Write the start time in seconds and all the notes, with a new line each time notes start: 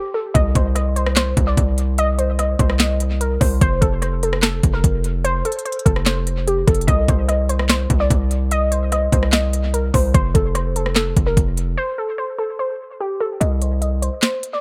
Already playing: G4
0.14 A4
0.34 C2 D#5, kick, closed hi-hat
0.55 C2 C5, kick, closed hi-hat
0.75 D#5, cross-stick, closed hi-hat
0.96 C5, closed hi-hat
1.06 cross-stick
1.16 C5, snare, clap, closed hi-hat
1.37 C2, kick, closed hi-hat
1.47 D5
1.57 C2, kick, closed hi-hat
1.78 closed hi-hat
1.98 D#5, closed hi-hat
2.19 C5, closed hi-hat
2.39 D#5, cross-stick, closed hi-hat
2.59 C2 C5, kick, closed hi-hat
2.70 cross-stick
2.79 D#5, snare, clap, closed hi-hat
3.00 closed hi-hat
3.21 A#4, closed hi-hat
3.41 C2 C5, kick, open hi-hat
3.61 F1 C5, kick, closed hi-hat
3.82 F1 A4, kick, closed hi-hat
4.02 C5, cross-stick, closed hi-hat
4.23 A4, closed hi-hat
4.33 cross-stick
4.42 A4, snare, clap, closed hi-hat
4.63 F1, kick, closed hi-hat
4.74 A#4
4.84 F1, kick, closed hi-hat
5.04 closed hi-hat
5.25 C5, closed hi-hat
5.45 A4, closed hi-hat
5.52 closed hi-hat
5.59 closed hi-hat
5.65 C5, closed hi-hat
5.72 closed hi-hat
5.79 closed hi-hat
5.86 F1 A4, kick, closed hi-hat
5.96 cross-stick
6.06 C5, snare, clap, closed hi-hat
6.27 closed hi-hat
6.48 G4, closed hi-hat
6.67 F1 A4, kick, closed hi-hat, open hi-hat
6.75 closed hi-hat
6.81 closed hi-hat
6.87 C2 D#5, kick, closed hi-hat
7.08 C2 C5, kick, closed hi-hat
7.29 D#5, cross-stick, closed hi-hat
7.49 C5, closed hi-hat
7.59 cross-stick
7.69 C5, snare, clap, closed hi-hat
7.90 C2, kick, closed hi-hat
8.00 D5
8.10 C2, kick, closed hi-hat
8.31 closed hi-hat
8.51 D#5, closed hi-hat
8.72 C5, closed hi-hat
8.92 D#5, cross-stick, closed hi-hat
9.12 C2 C5, kick, closed hi-hat
9.23 cross-stick
9.32 D#5, snare, clap, closed hi-hat
9.53 closed hi-hat
9.74 A#4, closed hi-hat
9.94 C2 C5, kick, open hi-hat
10.14 F1 C5, kick, closed hi-hat
10.35 F1 A4, kick, closed hi-hat
10.55 C5, cross-stick, closed hi-hat
10.76 A4, closed hi-hat
10.86 cross-stick
10.95 A4, snare, clap, closed hi-hat
11.17 F1, kick, closed hi-hat
11.27 A#4
11.37 F1, kick, closed hi-hat
11.57 closed hi-hat
11.78 C5
11.98 A4
12.18 C5
12.39 A4
12.59 C5
13.01 G4
13.21 A4
13.41 C2 D#5, closed hi-hat
13.62 C5, closed hi-hat
13.82 D#5, closed hi-hat
14.02 C5, closed hi-hat
14.22 C5, snare, clap, closed hi-hat
14.43 closed hi-hat
14.53 D5